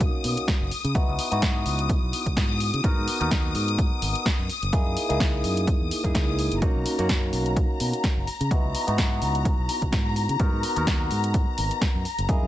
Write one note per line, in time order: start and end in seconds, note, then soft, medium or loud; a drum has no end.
0.00 0.11 B1 medium
0.00 0.70 A#3 medium
0.00 0.70 C#4 medium
0.00 0.70 D#4 medium
0.00 0.71 F#4 medium
0.00 6.63 D#6 medium
0.00 kick loud
0.00 closed hi-hat medium
0.00 impact medium
0.24 0.35 B2 medium
0.24 open hi-hat loud
0.37 closed hi-hat medium
0.48 kick loud
0.48 snare loud
0.48 closed hi-hat medium
0.61 0.70 F#1 medium
0.71 open hi-hat loud
0.84 0.93 C#3 loud
0.84 closed hi-hat medium
0.95 1.06 C#2 loud
0.95 1.29 B3 medium
0.95 1.29 D#4 medium
0.95 1.29 E4 medium
0.95 1.29 F#4 medium
0.95 kick loud
0.95 closed hi-hat medium
1.08 1.17 C#2 loud
1.19 open hi-hat loud
1.31 1.63 G#2 medium
1.31 2.81 B3 medium
1.31 2.81 D#4 medium
1.31 2.82 E4 medium
1.31 2.82 F#4 medium
1.31 closed hi-hat medium
1.42 kick loud
1.42 snare loud
1.42 closed hi-hat medium
1.66 1.99 C#2 loud
1.66 open hi-hat loud
1.79 closed hi-hat medium
1.89 kick loud
1.89 closed hi-hat medium
2.03 2.12 B1 medium
2.13 open hi-hat loud
2.26 2.35 C#2 medium
2.26 kick medium
2.26 closed hi-hat medium
2.37 2.70 G#2 medium
2.37 kick loud
2.37 snare loud
2.37 closed hi-hat medium
2.60 open hi-hat loud
2.74 2.82 C#3 medium
2.74 closed hi-hat medium
2.84 2.95 G#2 loud
2.84 3.18 B3 medium
2.84 3.18 D#4 medium
2.84 3.18 F#4 medium
2.84 3.18 A#4 medium
2.84 kick loud
2.84 closed hi-hat medium
2.97 3.06 G#2 loud
3.08 open hi-hat loud
3.20 3.52 D#2 medium
3.20 4.48 B3 medium
3.20 4.48 D#4 medium
3.20 4.48 F#4 medium
3.20 4.49 A#4 medium
3.20 closed hi-hat soft
3.31 kick loud
3.31 snare loud
3.31 closed hi-hat medium
3.55 3.88 G#2 medium
3.55 open hi-hat loud
3.68 closed hi-hat medium
3.78 kick loud
3.78 closed hi-hat medium
4.02 4.13 G#1 loud
4.02 open hi-hat loud
4.15 closed hi-hat soft
4.26 kick loud
4.26 snare loud
4.26 closed hi-hat medium
4.39 4.48 F#2 medium
4.49 open hi-hat loud
4.63 4.71 F#1 loud
4.63 closed hi-hat medium
4.72 4.84 F#2 medium
4.72 5.06 A#3 medium
4.72 5.06 D#4 medium
4.72 5.07 E4 medium
4.72 5.07 G#4 medium
4.72 kick loud
4.72 closed hi-hat medium
4.86 4.95 F#2 loud
4.97 open hi-hat loud
5.09 5.41 C#2 medium
5.09 6.01 A#3 medium
5.09 6.01 D#4 medium
5.09 6.02 E4 medium
5.09 6.02 G#4 medium
5.09 closed hi-hat soft
5.20 kick loud
5.20 snare loud
5.20 closed hi-hat medium
5.44 5.77 F#2 medium
5.44 open hi-hat loud
5.57 closed hi-hat medium
5.67 kick loud
5.67 closed hi-hat medium
5.81 5.90 E2 medium
5.91 open hi-hat loud
6.04 6.13 F#2 medium
6.04 6.59 A#3 medium
6.04 6.59 D#4 medium
6.04 6.60 E4 medium
6.04 6.60 G#4 medium
6.04 kick medium
6.04 closed hi-hat soft
6.15 6.48 C#2 medium
6.15 kick loud
6.15 snare loud
6.15 closed hi-hat medium
6.39 open hi-hat loud
6.52 6.61 F#1 medium
6.52 closed hi-hat soft
6.62 6.73 B1 loud
6.62 6.96 A#3 medium
6.62 6.96 C#4 medium
6.62 6.96 D#4 medium
6.62 6.96 F#4 medium
6.62 12.47 A#5 medium
6.62 kick loud
6.62 closed hi-hat medium
6.76 6.84 B1 loud
6.86 open hi-hat loud
6.98 7.30 F#2 medium
6.98 8.26 A#3 medium
6.98 8.26 C#4 medium
6.98 8.26 D#4 medium
6.98 8.27 F#4 medium
6.98 closed hi-hat soft
7.09 kick loud
7.09 snare loud
7.09 closed hi-hat medium
7.33 7.66 B1 medium
7.33 open hi-hat loud
7.46 closed hi-hat medium
7.56 kick loud
7.56 closed hi-hat medium
7.80 7.91 B2 loud
7.80 open hi-hat loud
7.93 closed hi-hat soft
8.04 kick loud
8.04 snare loud
8.04 closed hi-hat medium
8.17 8.26 F#1 medium
8.27 open hi-hat loud
8.40 8.49 C#3 loud
8.40 closed hi-hat medium
8.51 8.62 C#2 loud
8.51 8.85 B3 medium
8.51 8.85 D#4 medium
8.51 8.85 E4 medium
8.51 8.85 F#4 medium
8.51 kick loud
8.51 closed hi-hat medium
8.64 8.73 C#2 loud
8.75 open hi-hat loud
8.87 9.19 G#2 medium
8.87 10.37 B3 medium
8.87 10.37 D#4 medium
8.87 10.38 E4 medium
8.87 10.38 F#4 medium
8.87 closed hi-hat medium
8.98 kick loud
8.98 snare loud
8.98 closed hi-hat medium
9.22 9.55 C#2 medium
9.22 open hi-hat loud
9.35 closed hi-hat medium
9.45 kick loud
9.45 closed hi-hat medium
9.58 9.67 B1 medium
9.69 open hi-hat loud
9.82 9.91 C#2 medium
9.82 kick medium
9.82 closed hi-hat medium
9.93 10.26 G#2 medium
9.93 kick loud
9.93 snare loud
9.93 closed hi-hat medium
10.16 open hi-hat loud
10.29 10.38 C#3 medium
10.29 closed hi-hat soft
10.40 10.51 G#2 loud
10.40 10.73 B3 medium
10.40 10.74 D#4 medium
10.40 10.74 F#4 medium
10.40 10.74 A#4 medium
10.40 kick loud
10.40 closed hi-hat medium
10.53 10.62 G#2 loud
10.63 open hi-hat loud
10.76 11.08 D#2 medium
10.76 12.04 B3 medium
10.76 12.04 D#4 medium
10.76 12.04 F#4 medium
10.76 12.05 A#4 medium
10.76 closed hi-hat medium
10.87 kick loud
10.87 snare loud
10.87 closed hi-hat medium
11.11 11.44 G#2 medium
11.11 open hi-hat loud
11.24 closed hi-hat medium
11.34 kick loud
11.34 closed hi-hat medium
11.58 11.69 G#1 loud
11.58 open hi-hat loud
11.71 closed hi-hat medium
11.81 kick loud
11.81 snare loud
11.81 closed hi-hat medium
11.95 12.04 F#2 medium
12.05 open hi-hat loud
12.18 12.27 F#1 loud
12.18 closed hi-hat medium
12.29 12.40 F#2 loud
12.29 12.47 A#3 medium
12.29 12.47 D#4 medium
12.29 12.47 E4 medium
12.29 12.47 G#4 medium
12.29 kick loud
12.29 closed hi-hat medium
12.42 12.47 F#2 loud